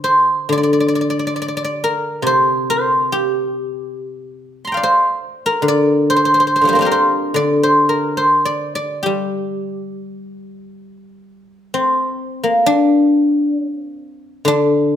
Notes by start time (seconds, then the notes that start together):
Already playing: D3 A#4 D5
0.04 C5
0.49 D3 D5
0.58 D5
0.63 D5
0.73 D5
0.80 D5
0.88 D5
0.95 D5
1.01 D5
1.10 D5
1.19 D5
1.27 D5
1.36 D5
1.42 D5
1.48 D5
1.57 D5
1.64 D5
1.84 A#4
2.22 C3
2.27 C5
2.70 C5
3.12 G4
4.65 A#5 C6
4.72 F5 G5
4.77 D5
4.83 C5
5.46 A#4
5.62 D3
5.68 D5
6.10 C5
6.16 C5
6.25 C5
6.34 C5
6.40 C5
6.47 C5
6.56 C5
6.61 D3 F3 C5
6.67 G3 C5
6.73 A#3 C4 C5
6.79 D4 F4 C5
6.85 G4 A#4
6.92 C5
7.34 D3 D5
7.63 C5
7.89 A#4
8.17 C5
8.45 D5
8.75 D5
9.03 G3 G4
11.74 C4
12.44 A#3
12.66 D4
13.55 C#4
13.77 C4
14.45 D3 D4